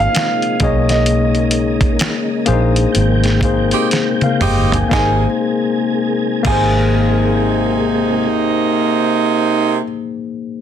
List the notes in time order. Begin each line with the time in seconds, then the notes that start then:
Already playing: C3 F3 G#3 A#3 D#4 G#4 A#4 C5
0.00 F5
0.15 finger snap, snare, closed hi-hat
0.42 closed hi-hat
0.60 B1 C#3 A#3 D#4 G#4 D#5, kick, closed hi-hat
0.64 C#5
0.89 D#5, snare, closed hi-hat
1.06 closed hi-hat
1.35 closed hi-hat
1.51 closed hi-hat
1.81 kick, closed hi-hat
1.99 finger snap, snare, closed hi-hat
2.46 A#1 A#3 D4 G#4 C5, closed hi-hat
2.53 D#4
2.76 closed hi-hat
2.92 G#1 C3 G5, closed hi-hat
3.24 snare, closed hi-hat
3.41 A#3 D#4 G#4, kick, closed hi-hat
3.45 C5
3.71 C4 D#4 G4, closed hi-hat
3.91 snare, closed hi-hat
4.21 F5, closed hi-hat, high tom
4.40 G1 C4 D#4 G4 G5, mid tom, open hi-hat
4.72 G#5, closed hi-hat, floor tom
4.89 G#1 C3 G#3 A#3 D#4 G#4 G#5, kick, snare
4.96 G#4 C5
6.43 G#1 C3 A#3 D#4, kick, crash
6.47 G#4 G#5
6.52 C5